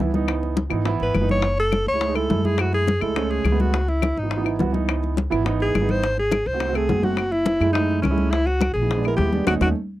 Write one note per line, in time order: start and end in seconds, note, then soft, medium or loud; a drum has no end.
0.00 0.66 C#2 medium
0.00 0.10 B3 medium
0.00 0.10 E4 medium
0.00 high bongo soft
0.00 low bongo medium
0.13 0.54 E3 medium
0.13 0.54 B3 medium
0.13 0.55 D#4 medium
0.13 high conga medium
0.28 high bongo medium
0.28 claves medium
0.43 high bongo soft
0.43 high conga soft
0.57 high bongo medium
0.57 high conga medium
0.70 0.98 G#1 medium
0.70 0.81 E3 medium
0.70 0.81 B3 medium
0.70 0.81 D#4 medium
0.70 high bongo soft
0.70 high conga soft
0.70 claves medium
0.85 1.10 E3 medium
0.85 1.11 B3 medium
0.85 1.11 E4 loud
0.85 high bongo medium
0.85 high conga soft
1.00 1.13 G#1 medium
1.00 1.28 B4 medium
1.00 high bongo soft
1.00 high conga soft
1.14 1.81 F#1 medium
1.14 high bongo soft
1.14 low bongo medium
1.14 high conga medium
1.14 claves medium
1.21 1.43 E3 medium
1.21 1.43 B3 medium
1.21 1.43 D#4 medium
1.29 1.57 C#5 loud
1.29 high conga medium
1.42 high bongo medium
1.42 high conga soft
1.58 1.85 A4 loud
1.58 high bongo soft
1.58 high conga soft
1.72 high bongo soft
1.72 high conga medium
1.72 claves medium
1.86 2.27 C#2 medium
1.86 2.17 C#5 medium
1.86 high bongo soft
1.86 high conga soft
1.93 2.03 G#3 medium
1.93 2.04 A3 soft
1.93 2.04 E4 medium
2.01 high bongo medium
2.01 high conga soft
2.07 2.12 G#3 medium
2.07 2.13 A3 medium
2.07 2.13 D#4 medium
2.14 2.25 G#3 medium
2.14 2.25 A3 medium
2.14 2.26 E4 medium
2.14 2.47 A4 medium
2.14 high bongo soft
2.14 high conga soft
2.14 claves medium
2.28 2.96 F#2 medium
2.28 2.39 G#3 medium
2.28 2.39 A3 medium
2.28 2.40 E4 medium
2.28 high bongo soft
2.28 low bongo medium
2.28 high conga medium
2.43 2.84 G#3 medium
2.43 2.84 A3 medium
2.43 2.85 E4 medium
2.43 2.61 G#4 medium
2.43 high conga medium
2.58 2.74 F#4 medium
2.58 high bongo medium
2.58 high conga soft
2.58 claves medium
2.73 3.03 G#4 medium
2.73 high bongo soft
2.73 high conga soft
2.87 high bongo medium
2.87 high conga medium
3.00 3.42 C#2 medium
3.00 3.11 G#3 medium
3.00 3.11 A3 medium
3.00 3.12 E4 medium
3.00 3.32 A4 medium
3.00 high bongo soft
3.00 high conga soft
3.00 claves medium
3.14 3.40 G#3 medium
3.14 3.41 A3 medium
3.14 3.41 C#4 medium
3.14 high bongo medium
3.14 high conga soft
3.31 3.62 G#4 medium
3.31 high bongo soft
3.31 high conga soft
3.44 4.11 C#2 medium
3.44 high bongo soft
3.44 low bongo medium
3.44 high conga medium
3.44 claves medium
3.51 3.73 G#3 medium
3.51 3.74 A3 medium
3.51 3.74 B3 medium
3.60 3.90 F#4 medium
3.60 high conga medium
3.74 high bongo medium
3.74 high conga soft
3.88 4.20 E4 medium
3.88 high bongo soft
3.88 high conga soft
4.02 high bongo medium
4.02 high conga medium
4.02 claves medium
4.16 4.57 G#1 medium
4.16 4.61 D#4 medium
4.16 high bongo soft
4.16 high conga soft
4.23 4.33 E3 medium
4.23 4.34 B3 soft
4.23 4.34 D#4 medium
4.31 high bongo medium
4.31 high conga soft
4.37 4.42 E3 medium
4.37 4.43 B3 medium
4.37 4.43 D#4 medium
4.44 4.55 E3 medium
4.44 4.55 B3 medium
4.44 4.55 E4 medium
4.44 high bongo soft
4.44 high conga soft
4.44 claves medium
4.59 5.26 C#2 medium
4.59 4.69 E3 medium
4.59 4.69 B3 medium
4.59 4.70 F#4 medium
4.59 high bongo soft
4.59 low bongo medium
4.59 high conga medium
4.72 5.13 E3 medium
4.72 5.14 B3 medium
4.72 5.14 D#4 medium
4.72 high conga medium
4.88 high bongo medium
4.88 high conga soft
4.88 claves medium
5.03 high bongo soft
5.03 high conga soft
5.17 high bongo medium
5.17 high conga medium
5.30 5.71 G#1 medium
5.30 5.41 E3 medium
5.30 5.41 B3 medium
5.30 5.41 E4 loud
5.30 high bongo soft
5.30 high conga soft
5.30 claves medium
5.44 5.70 E3 medium
5.44 5.71 B3 medium
5.44 5.71 D#4 medium
5.44 high bongo medium
5.44 high conga soft
5.60 5.92 G#4 medium
5.60 high bongo soft
5.60 high conga soft
5.75 6.41 G#1 medium
5.75 high bongo soft
5.75 low bongo medium
5.75 high conga medium
5.75 claves medium
5.81 6.03 E3 medium
5.81 6.03 B3 medium
5.81 6.04 D#4 medium
5.89 6.18 C5 loud
5.89 high conga medium
6.04 high bongo medium
6.18 6.49 G#4 medium
6.18 high bongo soft
6.18 high conga soft
6.31 high bongo medium
6.31 high conga medium
6.31 claves medium
6.46 6.86 C2 medium
6.46 6.77 C5 loud
6.46 high bongo soft
6.46 high conga soft
6.53 6.63 A3 medium
6.53 6.64 C4 soft
6.53 6.64 F#4 medium
6.60 high bongo medium
6.60 high conga soft
6.67 6.71 A3 medium
6.67 6.72 C4 medium
6.67 6.73 F#4 medium
6.73 6.84 A3 medium
6.73 6.84 C4 medium
6.73 7.05 G#4 medium
6.73 6.85 A4 medium
6.73 high bongo soft
6.73 high conga soft
6.73 claves medium
6.88 7.55 F#1 medium
6.88 6.98 A3 medium
6.88 6.99 C4 medium
6.88 6.99 F#4 medium
6.88 high bongo soft
6.88 low bongo medium
6.88 high conga medium
7.02 7.17 A3 medium
7.02 7.17 C4 medium
7.02 7.18 F#4 medium
7.02 7.33 F#4 medium
7.02 high conga medium
7.17 high bongo medium
7.17 high conga soft
7.17 claves medium
7.32 7.72 E4 medium
7.32 high bongo soft
7.32 high conga soft
7.46 high bongo medium
7.46 high conga medium
7.60 8.00 F#2 medium
7.60 7.70 G#3 medium
7.60 7.71 A3 medium
7.60 7.71 E4 medium
7.60 high bongo soft
7.60 high conga soft
7.60 claves medium
7.73 7.99 G#3 medium
7.73 8.00 A3 medium
7.73 8.01 D#4 medium
7.73 8.00 E4 medium
7.73 high bongo medium
7.73 high conga soft
7.89 high bongo soft
7.89 high conga soft
8.02 8.70 C#2 medium
8.02 8.32 C#4 medium
8.02 high bongo soft
8.02 low bongo medium
8.02 high conga medium
8.02 claves medium
8.10 8.32 G#3 medium
8.10 8.32 A3 medium
8.10 8.32 E4 medium
8.18 high conga medium
8.31 8.48 E4 medium
8.31 high bongo medium
8.31 high conga soft
8.46 8.73 F#4 medium
8.46 high bongo soft
8.46 high conga soft
8.61 high bongo medium
8.61 high conga loud
8.61 claves medium
8.74 9.15 A#1 medium
8.74 9.06 G#4 medium
8.74 high bongo soft
8.74 high conga soft
8.81 8.89 E3 medium
8.81 8.90 B3 soft
8.81 8.90 D#4 soft
8.89 high bongo medium
8.89 high conga soft
8.96 9.02 G#3 medium
8.96 9.02 B3 medium
8.96 9.02 D4 medium
9.04 9.14 G#3 medium
9.04 9.15 B3 medium
9.04 9.15 E4 medium
9.04 high bongo soft
9.04 high conga soft
9.04 claves medium
9.08 9.16 A#4 medium
9.17 9.45 D#2 medium
9.17 9.28 G#3 medium
9.17 9.29 B3 medium
9.17 9.29 E4 medium
9.17 9.44 G4 medium
9.17 high bongo soft
9.17 low bongo medium
9.17 high conga medium
9.32 9.47 G#3 medium
9.32 9.47 B3 medium
9.32 9.48 D4 medium
9.32 high conga medium
9.47 9.58 D#2 medium
9.47 9.56 A3 medium
9.47 9.56 C#4 medium
9.47 9.56 D#4 medium
9.47 9.54 F#4 medium
9.47 high bongo medium
9.47 high conga medium
9.47 claves medium
9.61 9.72 D#2 medium
9.61 9.70 A3 medium
9.61 9.70 C#4 medium
9.61 9.70 D#4 medium
9.61 9.69 F#4 medium
9.61 high bongo medium
9.61 high conga medium
9.61 claves medium